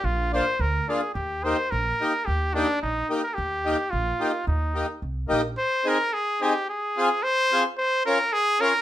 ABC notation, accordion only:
X:1
M:2/4
L:1/8
Q:1/4=109
K:Eb
V:1 name="Accordion"
z [B,DF] z [B,DF] | z [B,EG] z [B,EG] | z [B,EG] z [B,EG] | z [B,EG] z [B,EG] |
z [B,EG] z [B,EG] | [K:Ab] z [CEA] z [CEA] | z [CFA] z [CFA] | z [DFB] z [DFB] |]